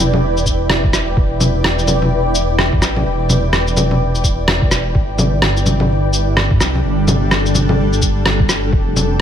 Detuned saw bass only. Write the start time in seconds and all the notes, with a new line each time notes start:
Already playing: E1
0.46 E1
1.17 E1
2.73 E2
2.82 A1
3.06 E1
4.24 E1
4.95 G1
6.51 G2
6.61 C2
6.84 G1
8.02 G1
8.73 F1